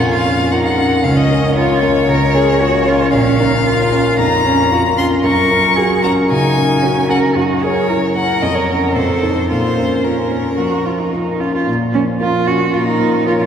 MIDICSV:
0, 0, Header, 1, 4, 480
1, 0, Start_track
1, 0, Key_signature, -5, "minor"
1, 0, Tempo, 526316
1, 950, Time_signature, 4, 2, 24, 8
1, 7195, Tempo, 537634
1, 12169, End_track
2, 0, Start_track
2, 0, Title_t, "Violin"
2, 0, Program_c, 0, 40
2, 0, Note_on_c, 0, 78, 58
2, 115, Note_off_c, 0, 78, 0
2, 119, Note_on_c, 0, 77, 69
2, 470, Note_on_c, 0, 78, 64
2, 483, Note_off_c, 0, 77, 0
2, 584, Note_off_c, 0, 78, 0
2, 589, Note_on_c, 0, 78, 67
2, 947, Note_on_c, 0, 77, 60
2, 960, Note_off_c, 0, 78, 0
2, 1061, Note_on_c, 0, 75, 69
2, 1075, Note_off_c, 0, 77, 0
2, 1416, Note_off_c, 0, 75, 0
2, 1422, Note_on_c, 0, 73, 79
2, 2826, Note_off_c, 0, 73, 0
2, 2854, Note_on_c, 0, 77, 75
2, 3806, Note_off_c, 0, 77, 0
2, 3821, Note_on_c, 0, 82, 79
2, 4528, Note_off_c, 0, 82, 0
2, 4541, Note_on_c, 0, 84, 79
2, 4614, Note_off_c, 0, 84, 0
2, 4784, Note_on_c, 0, 85, 79
2, 5491, Note_off_c, 0, 85, 0
2, 5503, Note_on_c, 0, 82, 69
2, 5576, Note_off_c, 0, 82, 0
2, 5745, Note_on_c, 0, 80, 75
2, 6456, Note_off_c, 0, 80, 0
2, 6476, Note_on_c, 0, 78, 58
2, 6549, Note_off_c, 0, 78, 0
2, 6961, Note_on_c, 0, 73, 61
2, 7404, Note_off_c, 0, 73, 0
2, 7435, Note_on_c, 0, 78, 64
2, 7672, Note_on_c, 0, 75, 66
2, 7686, Note_off_c, 0, 78, 0
2, 7784, Note_on_c, 0, 73, 54
2, 7797, Note_off_c, 0, 75, 0
2, 8139, Note_off_c, 0, 73, 0
2, 8145, Note_on_c, 0, 72, 49
2, 8622, Note_off_c, 0, 72, 0
2, 8630, Note_on_c, 0, 72, 55
2, 9120, Note_on_c, 0, 70, 46
2, 9134, Note_off_c, 0, 72, 0
2, 10093, Note_off_c, 0, 70, 0
2, 11525, Note_on_c, 0, 70, 46
2, 11965, Note_off_c, 0, 70, 0
2, 11994, Note_on_c, 0, 73, 43
2, 12169, Note_off_c, 0, 73, 0
2, 12169, End_track
3, 0, Start_track
3, 0, Title_t, "Cello"
3, 0, Program_c, 1, 42
3, 0, Note_on_c, 1, 65, 56
3, 471, Note_off_c, 1, 65, 0
3, 476, Note_on_c, 1, 63, 52
3, 943, Note_off_c, 1, 63, 0
3, 951, Note_on_c, 1, 61, 55
3, 1428, Note_on_c, 1, 65, 60
3, 1442, Note_off_c, 1, 61, 0
3, 1658, Note_off_c, 1, 65, 0
3, 1664, Note_on_c, 1, 65, 56
3, 1737, Note_off_c, 1, 65, 0
3, 1901, Note_on_c, 1, 70, 57
3, 2144, Note_on_c, 1, 68, 58
3, 2158, Note_off_c, 1, 70, 0
3, 2386, Note_on_c, 1, 66, 54
3, 2399, Note_off_c, 1, 68, 0
3, 2627, Note_on_c, 1, 65, 58
3, 2641, Note_off_c, 1, 66, 0
3, 2852, Note_off_c, 1, 65, 0
3, 2857, Note_on_c, 1, 61, 59
3, 3099, Note_on_c, 1, 63, 59
3, 3113, Note_off_c, 1, 61, 0
3, 3332, Note_off_c, 1, 63, 0
3, 3338, Note_on_c, 1, 65, 60
3, 3817, Note_off_c, 1, 65, 0
3, 3833, Note_on_c, 1, 63, 54
3, 4066, Note_off_c, 1, 63, 0
3, 4071, Note_on_c, 1, 61, 50
3, 4300, Note_off_c, 1, 61, 0
3, 4306, Note_on_c, 1, 66, 55
3, 4379, Note_off_c, 1, 66, 0
3, 4546, Note_on_c, 1, 65, 53
3, 4787, Note_on_c, 1, 70, 67
3, 4800, Note_off_c, 1, 65, 0
3, 5257, Note_on_c, 1, 68, 57
3, 5271, Note_off_c, 1, 70, 0
3, 5493, Note_off_c, 1, 68, 0
3, 5499, Note_on_c, 1, 66, 50
3, 5572, Note_off_c, 1, 66, 0
3, 5741, Note_on_c, 1, 63, 58
3, 6220, Note_on_c, 1, 61, 47
3, 6234, Note_off_c, 1, 63, 0
3, 6465, Note_on_c, 1, 70, 57
3, 6479, Note_off_c, 1, 61, 0
3, 6707, Note_on_c, 1, 66, 50
3, 6721, Note_off_c, 1, 70, 0
3, 6949, Note_on_c, 1, 68, 54
3, 6962, Note_off_c, 1, 66, 0
3, 7187, Note_off_c, 1, 68, 0
3, 7192, Note_on_c, 1, 70, 53
3, 7264, Note_off_c, 1, 70, 0
3, 7428, Note_on_c, 1, 70, 51
3, 8148, Note_on_c, 1, 69, 51
3, 8162, Note_off_c, 1, 70, 0
3, 8623, Note_off_c, 1, 69, 0
3, 8628, Note_on_c, 1, 65, 40
3, 9059, Note_off_c, 1, 65, 0
3, 9113, Note_on_c, 1, 61, 43
3, 9569, Note_off_c, 1, 61, 0
3, 9594, Note_on_c, 1, 66, 53
3, 9844, Note_on_c, 1, 65, 43
3, 9857, Note_off_c, 1, 66, 0
3, 9964, Note_on_c, 1, 63, 44
3, 9977, Note_off_c, 1, 65, 0
3, 10329, Note_on_c, 1, 65, 47
3, 10342, Note_off_c, 1, 63, 0
3, 10453, Note_off_c, 1, 65, 0
3, 10462, Note_on_c, 1, 65, 41
3, 10577, Note_off_c, 1, 65, 0
3, 10815, Note_on_c, 1, 61, 54
3, 10886, Note_off_c, 1, 61, 0
3, 11046, Note_on_c, 1, 65, 59
3, 11285, Note_on_c, 1, 66, 57
3, 11298, Note_off_c, 1, 65, 0
3, 11524, Note_on_c, 1, 65, 52
3, 11538, Note_off_c, 1, 66, 0
3, 11639, Note_off_c, 1, 65, 0
3, 11645, Note_on_c, 1, 63, 52
3, 11992, Note_off_c, 1, 63, 0
3, 12001, Note_on_c, 1, 65, 61
3, 12048, Note_off_c, 1, 65, 0
3, 12118, Note_on_c, 1, 65, 59
3, 12169, Note_off_c, 1, 65, 0
3, 12169, End_track
4, 0, Start_track
4, 0, Title_t, "Grand piano"
4, 0, Program_c, 2, 0
4, 0, Control_c, 2, 64, 127
4, 0, Note_on_c, 2, 34, 43
4, 0, Note_on_c, 2, 41, 40
4, 0, Note_on_c, 2, 61, 38
4, 0, Note_on_c, 2, 65, 35
4, 0, Note_on_c, 2, 70, 45
4, 230, Note_off_c, 2, 61, 0
4, 230, Note_on_c, 2, 61, 38
4, 232, Note_off_c, 2, 70, 0
4, 232, Note_on_c, 2, 70, 42
4, 375, Note_off_c, 2, 41, 0
4, 446, Note_off_c, 2, 61, 0
4, 447, Note_off_c, 2, 70, 0
4, 467, Note_off_c, 2, 65, 0
4, 467, Note_on_c, 2, 65, 37
4, 473, Note_on_c, 2, 70, 43
4, 684, Note_off_c, 2, 65, 0
4, 687, Note_off_c, 2, 70, 0
4, 706, Note_on_c, 2, 61, 38
4, 708, Note_on_c, 2, 70, 45
4, 924, Note_off_c, 2, 61, 0
4, 925, Note_off_c, 2, 70, 0
4, 953, Note_on_c, 2, 37, 49
4, 966, Control_c, 2, 64, 0
4, 968, Note_off_c, 2, 34, 0
4, 1098, Control_c, 2, 64, 127
4, 1189, Note_on_c, 2, 61, 40
4, 1191, Note_on_c, 2, 70, 43
4, 1403, Note_off_c, 2, 61, 0
4, 1404, Note_off_c, 2, 70, 0
4, 1425, Note_on_c, 2, 65, 43
4, 1430, Note_on_c, 2, 70, 44
4, 1639, Note_off_c, 2, 65, 0
4, 1642, Note_off_c, 2, 70, 0
4, 1663, Note_on_c, 2, 61, 40
4, 1667, Note_on_c, 2, 70, 45
4, 1875, Note_off_c, 2, 37, 0
4, 1878, Note_off_c, 2, 61, 0
4, 1880, Note_off_c, 2, 70, 0
4, 1900, Note_on_c, 2, 37, 44
4, 2136, Note_on_c, 2, 61, 40
4, 2140, Note_on_c, 2, 70, 43
4, 2353, Note_off_c, 2, 61, 0
4, 2355, Note_off_c, 2, 70, 0
4, 2375, Note_on_c, 2, 65, 44
4, 2381, Note_on_c, 2, 70, 46
4, 2592, Note_off_c, 2, 65, 0
4, 2595, Note_off_c, 2, 70, 0
4, 2613, Note_on_c, 2, 61, 43
4, 2619, Note_on_c, 2, 70, 46
4, 2828, Note_off_c, 2, 37, 0
4, 2831, Note_off_c, 2, 61, 0
4, 2834, Note_off_c, 2, 70, 0
4, 2853, Note_on_c, 2, 34, 52
4, 2876, Control_c, 2, 64, 0
4, 3038, Control_c, 2, 64, 127
4, 3094, Note_on_c, 2, 61, 39
4, 3097, Note_on_c, 2, 70, 47
4, 3312, Note_off_c, 2, 61, 0
4, 3314, Note_off_c, 2, 70, 0
4, 3336, Note_on_c, 2, 65, 40
4, 3337, Note_on_c, 2, 70, 43
4, 3556, Note_off_c, 2, 65, 0
4, 3557, Note_off_c, 2, 70, 0
4, 3575, Note_on_c, 2, 61, 41
4, 3581, Note_on_c, 2, 70, 48
4, 3796, Note_off_c, 2, 34, 0
4, 3798, Note_off_c, 2, 61, 0
4, 3802, Note_off_c, 2, 70, 0
4, 3819, Note_on_c, 2, 41, 39
4, 4059, Note_on_c, 2, 61, 39
4, 4064, Note_on_c, 2, 70, 43
4, 4207, Note_off_c, 2, 41, 0
4, 4278, Note_off_c, 2, 61, 0
4, 4280, Note_off_c, 2, 70, 0
4, 4297, Note_on_c, 2, 65, 43
4, 4301, Note_on_c, 2, 70, 44
4, 4516, Note_off_c, 2, 65, 0
4, 4519, Note_off_c, 2, 70, 0
4, 4541, Note_on_c, 2, 61, 38
4, 4543, Note_on_c, 2, 70, 44
4, 4758, Note_off_c, 2, 61, 0
4, 4759, Note_off_c, 2, 70, 0
4, 4778, Note_on_c, 2, 42, 48
4, 4803, Control_c, 2, 64, 0
4, 4946, Control_c, 2, 64, 127
4, 5022, Note_on_c, 2, 61, 40
4, 5025, Note_on_c, 2, 70, 47
4, 5239, Note_off_c, 2, 61, 0
4, 5241, Note_off_c, 2, 70, 0
4, 5267, Note_on_c, 2, 66, 38
4, 5267, Note_on_c, 2, 70, 42
4, 5483, Note_off_c, 2, 66, 0
4, 5483, Note_off_c, 2, 70, 0
4, 5507, Note_on_c, 2, 61, 41
4, 5513, Note_on_c, 2, 70, 45
4, 5714, Note_off_c, 2, 42, 0
4, 5724, Note_off_c, 2, 61, 0
4, 5727, Note_off_c, 2, 70, 0
4, 5753, Note_on_c, 2, 49, 41
4, 5989, Note_on_c, 2, 61, 35
4, 5990, Note_on_c, 2, 70, 39
4, 6135, Note_off_c, 2, 49, 0
4, 6205, Note_off_c, 2, 61, 0
4, 6206, Note_off_c, 2, 70, 0
4, 6229, Note_on_c, 2, 66, 38
4, 6234, Note_on_c, 2, 70, 43
4, 6447, Note_off_c, 2, 66, 0
4, 6450, Note_off_c, 2, 70, 0
4, 6473, Note_on_c, 2, 61, 37
4, 6476, Note_on_c, 2, 70, 39
4, 6691, Note_off_c, 2, 61, 0
4, 6693, Note_off_c, 2, 70, 0
4, 6716, Note_on_c, 2, 42, 44
4, 6732, Control_c, 2, 64, 0
4, 6879, Control_c, 2, 64, 127
4, 6964, Note_on_c, 2, 61, 37
4, 6966, Note_on_c, 2, 70, 42
4, 7178, Note_off_c, 2, 61, 0
4, 7179, Note_off_c, 2, 70, 0
4, 7203, Note_on_c, 2, 64, 34
4, 7208, Note_on_c, 2, 70, 37
4, 7414, Note_off_c, 2, 64, 0
4, 7417, Note_off_c, 2, 70, 0
4, 7436, Note_on_c, 2, 61, 35
4, 7441, Note_on_c, 2, 70, 35
4, 7646, Note_off_c, 2, 42, 0
4, 7650, Note_off_c, 2, 61, 0
4, 7653, Note_off_c, 2, 70, 0
4, 7673, Note_on_c, 2, 41, 41
4, 7690, Control_c, 2, 64, 0
4, 7830, Control_c, 2, 64, 127
4, 7915, Note_on_c, 2, 61, 32
4, 7919, Note_on_c, 2, 70, 32
4, 8130, Note_off_c, 2, 61, 0
4, 8132, Note_off_c, 2, 70, 0
4, 8134, Note_off_c, 2, 41, 0
4, 8148, Note_on_c, 2, 41, 44
4, 8170, Control_c, 2, 64, 0
4, 8326, Control_c, 2, 64, 127
4, 8390, Note_on_c, 2, 63, 31
4, 8395, Note_on_c, 2, 69, 34
4, 8610, Note_off_c, 2, 63, 0
4, 8612, Note_off_c, 2, 69, 0
4, 8619, Note_off_c, 2, 41, 0
4, 8636, Note_on_c, 2, 46, 36
4, 8654, Control_c, 2, 64, 0
4, 8779, Control_c, 2, 64, 127
4, 8881, Note_on_c, 2, 61, 28
4, 8884, Note_on_c, 2, 70, 32
4, 9097, Note_off_c, 2, 61, 0
4, 9099, Note_off_c, 2, 70, 0
4, 9116, Note_on_c, 2, 65, 29
4, 9118, Note_on_c, 2, 70, 33
4, 9336, Note_off_c, 2, 65, 0
4, 9337, Note_off_c, 2, 70, 0
4, 9361, Note_on_c, 2, 61, 32
4, 9365, Note_on_c, 2, 70, 34
4, 9578, Note_off_c, 2, 46, 0
4, 9581, Note_off_c, 2, 61, 0
4, 9583, Note_off_c, 2, 70, 0
4, 9599, Note_on_c, 2, 53, 26
4, 9845, Note_on_c, 2, 61, 27
4, 9848, Note_on_c, 2, 70, 29
4, 9992, Note_off_c, 2, 53, 0
4, 10066, Note_off_c, 2, 61, 0
4, 10067, Note_off_c, 2, 70, 0
4, 10087, Note_on_c, 2, 65, 29
4, 10090, Note_on_c, 2, 70, 34
4, 10308, Note_off_c, 2, 65, 0
4, 10310, Note_off_c, 2, 70, 0
4, 10330, Note_on_c, 2, 61, 30
4, 10333, Note_on_c, 2, 70, 32
4, 10549, Note_off_c, 2, 61, 0
4, 10551, Note_off_c, 2, 70, 0
4, 10568, Note_on_c, 2, 46, 39
4, 10592, Control_c, 2, 64, 0
4, 10769, Control_c, 2, 64, 127
4, 10810, Note_on_c, 2, 53, 35
4, 11046, Note_on_c, 2, 65, 34
4, 11050, Note_on_c, 2, 70, 36
4, 11193, Note_off_c, 2, 53, 0
4, 11263, Note_off_c, 2, 65, 0
4, 11265, Note_off_c, 2, 70, 0
4, 11280, Note_on_c, 2, 61, 34
4, 11494, Note_off_c, 2, 46, 0
4, 11516, Note_on_c, 2, 46, 35
4, 11663, Note_off_c, 2, 61, 0
4, 11755, Note_on_c, 2, 53, 31
4, 11996, Note_on_c, 2, 65, 37
4, 12000, Note_on_c, 2, 70, 38
4, 12137, Note_off_c, 2, 53, 0
4, 12169, Note_off_c, 2, 46, 0
4, 12169, Note_off_c, 2, 65, 0
4, 12169, Note_off_c, 2, 70, 0
4, 12169, End_track
0, 0, End_of_file